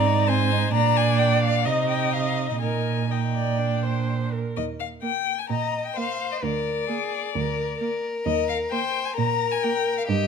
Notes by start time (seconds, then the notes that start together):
Already playing: G#2 D5 A#5
0.06 D#4
0.27 C4 C5 G#5
0.51 D#4
0.73 A#2 D4 D5 A#5
0.97 G#5
1.19 G5
1.43 F5
1.65 C3 D#4 D#5
1.89 G5
2.13 F5
2.49 D#5
2.61 A#2 D#4 A#4 G#5
3.10 D#4 D#5 G5
3.35 D5
3.59 D4
3.83 C5
4.32 A#4
4.57 D#2 D#5
4.80 F5
5.02 A#3 G5
5.39 G#5
5.50 A#2 D#5 A#5
5.86 G5
5.96 A#3 C5 F5
6.32 D#5
6.42 D2 A#4 D5
6.88 A#3 G#4
7.35 D2 A#4
7.80 A#3 A#4
8.25 D#2 D#5
8.49 F5
8.71 A#3 C5 G5
9.05 G#5
9.16 A#2 A#4 A#5
9.51 G#5
9.63 A#3 G5
9.98 F5
10.08 G2 G4 D#5